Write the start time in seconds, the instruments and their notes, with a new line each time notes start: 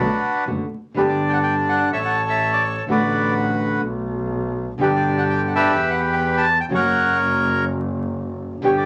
Already playing: bandoneon D4 F#4 B4
0.00 double bass B1, nylon-string guitar A3 B3 F#4
0.47 double bass F#1, nylon-string guitar B2 D3 A3 B3 F#4
0.94 double bass G1, nylon-string guitar D3 G3 B3 G4, bandoneon D4 B4
1.09 bandoneon D5
1.29 bandoneon F#5 G5
1.43 bandoneon G5
1.69 bandoneon F#5
1.91 double bass A1, bandoneon A4 C#5 E5
2.05 bandoneon F#5
2.30 bandoneon E5
2.53 bandoneon D5
2.78 bandoneon C#5
2.87 double bass A1, nylon-string guitar D3 A3 B3 F#4
2.91 bandoneon F#4 B4 D5
3.82 double bass B1
4.78 double bass G1, nylon-string guitar B2 D3 G3 B3 G4, bandoneon G4
4.82 bandoneon D4 B4
4.96 bandoneon D5
5.18 bandoneon F#5
5.30 bandoneon G5
5.48 bandoneon F#5
5.55 bandoneon G4 B4 E5
5.74 double bass E2
5.91 bandoneon F#5
6.13 bandoneon G5
6.37 bandoneon A5
6.60 bandoneon G5
6.69 double bass F#1, nylon-string guitar C#3 F#3 A#3 C#4 F#4
6.75 bandoneon A#4 C#5 F#5
8.62 double bass G1, nylon-string guitar B2 D3 G3 B3 G4, bandoneon G4
8.66 bandoneon C#5
8.77 bandoneon D5